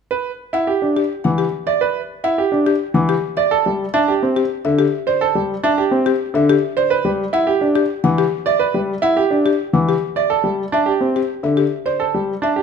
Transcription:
0.11 grand piano B4
0.53 grand piano E4, marimba F#5
0.67 grand piano G4
0.82 grand piano D4
0.97 marimba G4
1.24 grand piano E3, marimba F#5
1.38 marimba G4
1.67 grand piano D5, marimba E5
1.81 grand piano B4
2.24 grand piano E4, marimba F#5
2.38 grand piano G4
2.52 grand piano D4
2.66 marimba G4
2.94 grand piano E3, marimba F#5
3.09 marimba G4
3.37 grand piano D5, marimba E5
3.51 grand piano A4
3.66 grand piano G3
3.94 grand piano D4, marimba E5
4.08 grand piano G4
4.23 grand piano C4
4.36 marimba G4
4.65 grand piano D3, marimba E5
4.79 marimba G4
5.07 grand piano C5, marimba D5
5.21 grand piano A4
5.35 grand piano G3
5.63 grand piano D4, marimba E5
5.78 grand piano G4
5.91 grand piano C4
6.06 marimba G4
6.34 grand piano D3, marimba E5
6.49 marimba G4
6.77 grand piano C5, marimba D5
6.90 grand piano B4
7.05 grand piano G3
7.33 grand piano E4, marimba F#5
7.47 grand piano G4
7.61 grand piano D4
7.76 marimba G4
8.04 grand piano E3, marimba F#5
8.18 marimba G4
8.46 grand piano D5, marimba E5
8.59 grand piano B4
8.74 grand piano G3
9.02 grand piano E4, marimba F#5
9.17 grand piano G4
9.31 grand piano D4
9.46 marimba G4
9.73 grand piano E3, marimba F#5
9.89 marimba G4
10.16 grand piano D5, marimba E5
10.30 grand piano A4
10.44 grand piano G3
10.72 grand piano D4, marimba E5
10.86 grand piano G4
11.01 grand piano C4
11.16 marimba G4
11.43 grand piano D3, marimba E5
11.57 marimba G4
11.86 grand piano C5, marimba D5
12.00 grand piano A4
12.14 grand piano G3
12.42 grand piano D4, marimba E5
12.56 grand piano G4

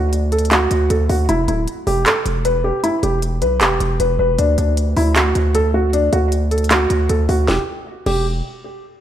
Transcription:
Already playing: 808-style bass D2
0.13 closed hi-hat
0.32 felt piano A4, closed hi-hat
0.39 closed hi-hat
0.45 closed hi-hat
0.51 felt piano F#4, clap, closed hi-hat
0.71 808-style bass D2, closed hi-hat
0.90 808-style bass D2, felt piano A4, closed hi-hat
1.09 808-style bass D2, felt piano F#4, open hi-hat
1.29 808-style bass E1, felt piano E4, closed hi-hat
1.48 808-style bass D1, felt piano E4, closed hi-hat
1.68 closed hi-hat
1.87 808-style bass E1, felt piano G4, open hi-hat
2.06 felt piano A4, clap, closed hi-hat
2.26 808-style bass E1, closed hi-hat
2.45 felt piano B4, closed hi-hat
2.64 felt piano G4
2.84 felt piano E4, closed hi-hat
3.03 808-style bass E1, felt piano G4, closed hi-hat
3.22 closed hi-hat
3.42 808-style bass B1, felt piano B4, closed hi-hat
3.61 808-style bass E1, felt piano G4, clap, closed hi-hat
3.80 808-style bass E1, closed hi-hat
4.00 808-style bass E1, felt piano B4, closed hi-hat
4.19 808-style bass E1, felt piano B4
4.38 808-style bass D2, felt piano D4, closed hi-hat
4.58 808-style bass D2, felt piano D4, closed hi-hat
4.77 closed hi-hat
4.96 808-style bass D2, felt piano E4, open hi-hat
5.16 felt piano F#4, clap, closed hi-hat
5.35 808-style bass D2, closed hi-hat
5.55 felt piano A4, closed hi-hat
5.74 felt piano F#4
5.93 felt piano D4, closed hi-hat
6.13 808-style bass D2, felt piano F#4, closed hi-hat
6.32 closed hi-hat
6.51 felt piano A4, closed hi-hat
6.58 closed hi-hat
6.64 closed hi-hat
6.71 felt piano F#4, clap, closed hi-hat
6.90 808-style bass D2, closed hi-hat
7.09 808-style bass D2, felt piano A4, closed hi-hat
7.29 808-style bass D2, felt piano F#4, open hi-hat
7.48 808-style bass E1, felt piano G4, snare
8.06 808-style bass E1, felt piano G4, crash

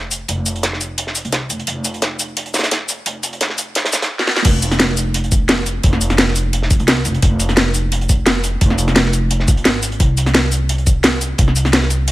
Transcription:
Already playing: upright bass F1
0.11 closed hi-hat, shaker
0.28 upright bass F1, closed hi-hat
0.46 closed hi-hat, shaker
0.56 closed hi-hat
0.63 snare, closed hi-hat
0.73 snare
0.81 closed hi-hat, shaker
0.98 closed hi-hat
1.07 snare
1.15 closed hi-hat, shaker
1.24 upright bass C2, closed hi-hat
1.32 snare, closed hi-hat
1.50 upright bass F1, closed hi-hat, shaker
1.60 closed hi-hat
1.67 upright bass F1, closed hi-hat
1.85 closed hi-hat, shaker
1.94 closed hi-hat
2.02 snare, closed hi-hat
2.19 closed hi-hat, shaker
2.37 closed hi-hat
2.46 closed hi-hat
2.54 snare, closed hi-hat, shaker
2.58 snare, closed hi-hat
2.63 snare, closed hi-hat
2.71 snare, closed hi-hat
2.89 closed hi-hat, shaker
3.06 upright bass F1, closed hi-hat
3.23 closed hi-hat, shaker
3.33 closed hi-hat
3.41 snare, closed hi-hat
3.50 snare
3.58 closed hi-hat, shaker
3.75 snare, closed hi-hat
3.85 snare, closed hi-hat
3.93 upright bass A#1, snare, closed hi-hat, shaker
4.02 snare, closed hi-hat
4.19 snare
4.27 snare
4.37 snare
4.45 upright bass F1, kick, closed hi-hat, crash
4.62 closed hi-hat, shaker
4.71 snare, closed hi-hat
4.80 snare, closed hi-hat
4.97 closed hi-hat, shaker
5.14 closed hi-hat
5.24 closed hi-hat
5.32 kick, closed hi-hat, shaker
5.49 snare, closed hi-hat
5.66 closed hi-hat, shaker
5.83 upright bass F1, kick, closed hi-hat
5.93 snare
6.01 closed hi-hat, shaker
6.10 snare, closed hi-hat
6.18 snare, closed hi-hat
6.28 snare
6.36 closed hi-hat, shaker
6.53 closed hi-hat
6.62 snare
6.71 kick, closed hi-hat, shaker
6.80 upright bass C2, closed hi-hat
6.88 snare, closed hi-hat
7.05 upright bass F1, closed hi-hat, shaker
7.14 closed hi-hat
7.22 upright bass F1, kick, closed hi-hat
7.40 closed hi-hat, shaker
7.49 snare, closed hi-hat
7.57 snare, closed hi-hat
7.74 closed hi-hat, shaker
7.92 closed hi-hat
8.01 closed hi-hat
8.09 kick, closed hi-hat, shaker
8.26 snare, closed hi-hat
8.44 closed hi-hat, shaker
8.61 upright bass F1, kick, closed hi-hat
8.70 snare
8.78 closed hi-hat, shaker
8.88 snare, closed hi-hat
8.96 snare, closed hi-hat
9.05 snare
9.13 closed hi-hat, shaker
9.31 closed hi-hat
9.40 snare
9.48 upright bass A#1, kick, closed hi-hat, shaker
9.57 closed hi-hat
9.65 upright bass G#1, snare, closed hi-hat
9.83 closed hi-hat, shaker
9.92 closed hi-hat
10.00 upright bass C2, kick, closed hi-hat
10.17 closed hi-hat, shaker
10.26 snare, closed hi-hat
10.35 snare, closed hi-hat
10.52 closed hi-hat, shaker
10.69 closed hi-hat
10.78 closed hi-hat
10.86 kick, closed hi-hat, shaker
11.03 snare, closed hi-hat
11.21 closed hi-hat, shaker
11.38 upright bass C2, kick, closed hi-hat
11.48 snare
11.56 closed hi-hat, shaker
11.65 snare, closed hi-hat
11.73 snare, closed hi-hat
11.82 snare
11.90 closed hi-hat, shaker
12.08 closed hi-hat

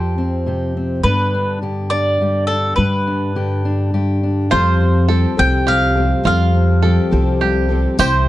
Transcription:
Already playing: upright bass F2, steel-string acoustic guitar F2 F3 C4 G4, mandolin C5
0.18 steel-string acoustic guitar C4
0.46 steel-string acoustic guitar C3 G4
0.77 steel-string acoustic guitar C4
1.03 upright bass G2, steel-string acoustic guitar G2 D3 B3 D4, mandolin B4
1.08 steel-string acoustic guitar G4
1.34 steel-string acoustic guitar D4
1.62 steel-string acoustic guitar D3 G4
1.90 steel-string acoustic guitar D4, mandolin D5
2.21 steel-string acoustic guitar G2 G4
2.47 steel-string acoustic guitar D4, mandolin A4
2.76 upright bass G2, steel-string acoustic guitar G2 G4, mandolin B4
3.07 steel-string acoustic guitar D4
3.35 steel-string acoustic guitar D3 G4
3.65 steel-string acoustic guitar D4
3.94 steel-string acoustic guitar G2 G4
4.23 steel-string acoustic guitar D4
4.50 steel-string acoustic guitar F2, upright bass F2, twelve-string acoustic guitar F3 G3 C4 G4 A4, five-string banjo F4, mandolin C5
4.81 steel-string acoustic guitar C4
5.08 steel-string acoustic guitar F3 G4, twelve-string acoustic guitar G3 C4 G4 A4, five-string banjo A4
5.37 upright bass C2, twelve-string acoustic guitar F3 G3 C4 G4 A4, steel-string acoustic guitar C4, mandolin G5
5.67 steel-string acoustic guitar C3 G3, five-string banjo G4, mandolin F5
5.95 steel-string acoustic guitar C4, twelve-string acoustic guitar C4 G4 A4
6.23 steel-string acoustic guitar F2, upright bass F2, twelve-string acoustic guitar F3 G3 C4 G4 A4, five-string banjo F4, mandolin F5
6.55 steel-string acoustic guitar C4
6.82 steel-string acoustic guitar F3 G4, twelve-string acoustic guitar G3 C4 G4 A4, five-string banjo A4
7.11 upright bass C2, twelve-string acoustic guitar F3 G3 C4 G4 A4, steel-string acoustic guitar C4
7.41 steel-string acoustic guitar C3 G3, five-string banjo G4
7.69 steel-string acoustic guitar C4, twelve-string acoustic guitar C4 G4 A4
7.98 upright bass C2, twelve-string acoustic guitar C3 E3 G3 C4 E4 C5, five-string banjo G4, mandolin C5, tambourine

